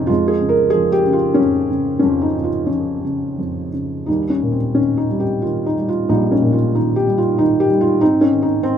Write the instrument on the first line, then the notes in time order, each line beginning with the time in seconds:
felt piano
Already playing: C2 F2 C3 D#3 G#3 C#4 D#4 F4 G4 G#4
0.07 F2 G#3 F4
0.28 G#4
0.41 C#3
0.49 A#4
0.70 F3 G#4
0.92 G4
1.07 C#3
1.13 F4
1.34 C#4
1.39 F2
1.70 C#3
1.99 F3 C#4
2.03 F2
2.21 D#4
2.37 C#3
2.44 F4
2.66 F3 C#4
3.04 C#3
3.38 F2
3.73 C#3
4.06 D#2 G3 D#4
4.23 D#4
4.30 C#4
4.43 A#2
4.52 C4
4.75 D#3 C#4
4.97 D#4
5.10 G3
5.20 G4
5.42 D#3 F4
5.66 D#4
5.77 G3
5.89 F4
6.09 A#1 G3 D#4
6.31 C#4
6.41 A#2
6.53 F4
6.75 D#3 D#4
6.96 G4
7.06 G3
7.18 F4
7.38 D#3 D#4
7.60 G4
7.70 G3
7.81 F4
8.01 G#2 C4 D#4
8.21 C#4
8.31 D#3
8.42 D#4
8.63 G#2 C4